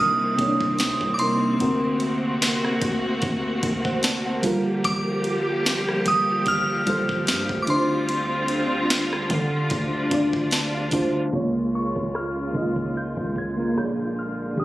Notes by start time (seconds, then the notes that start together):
Already playing: C3 D#3 A#3 C4 D4 D#4
0.00 C2 D#6
0.37 C2 C3 A#3 D#4, kick, closed hi-hat
0.41 C#5
0.47 D4
0.61 kick
0.79 D2, snare, closed hi-hat
1.01 C2, kick
1.14 C3 D6
1.19 A#3 D#4 A#4 C6, closed hi-hat
1.58 D2 D3 C4 F#4, closed hi-hat
1.62 A#4
2.00 closed hi-hat
2.42 snare, closed hi-hat
2.65 cross-stick
2.82 D2, kick, closed hi-hat
3.22 D2, kick, closed hi-hat
3.63 D2, kick, closed hi-hat
3.85 C5 F#5, kick
4.03 D5 A5, snare, closed hi-hat
4.26 C5 F#5
4.42 G1 F3 G3 F4 G4 A4, kick, open hi-hat
4.46 A#4
4.84 G1 D6, kick, closed hi-hat
5.24 closed hi-hat
5.66 snare, closed hi-hat
5.89 cross-stick
6.06 G1 D#6, kick, closed hi-hat
6.46 G1 F6, kick, closed hi-hat
6.85 G1 G3 F4 A4, kick, closed hi-hat
6.90 C5
7.09 kick
7.27 G2, snare, closed hi-hat
7.49 D2, kick
7.62 D6
7.67 D3 C4 D4 D#4 F4 C6, closed hi-hat
7.71 C5
7.76 F4
8.09 closed hi-hat
8.48 closed hi-hat
8.90 snare, closed hi-hat
9.13 cross-stick
9.30 D3 D4, kick, closed hi-hat
9.70 D2, kick, closed hi-hat
10.10 D2 D3 D4 F4, kick, closed hi-hat
10.14 D5
10.33 kick
10.51 A5, snare, closed hi-hat
10.75 F5
10.91 D2 D3 D4 F4 D5, kick, open hi-hat
10.95 C5
11.31 C#2 C#3 G#3 A#3 F4, kick, closed hi-hat
11.35 C#5
11.75 C#6
11.96 C#2, kick
12.15 F6, cross-stick, closed hi-hat
12.53 C#2 C#3 A#3 D#4, kick, closed hi-hat
12.57 D#5
12.62 F4
12.76 kick
12.95 G6, closed hi-hat
13.17 C#2, kick
13.36 G#6, kick, closed hi-hat
13.50 closed hi-hat
13.55 C#3 A#3 F4
13.60 A#4, closed hi-hat
13.74 A#1 A#2 D3 A#3 G#4, cross-stick, closed hi-hat
13.78 C#5 G6
13.85 D5
14.16 F6, closed hi-hat
14.56 D#1 D#3 A#3 D4 G4 D#6, kick, closed hi-hat
14.60 D4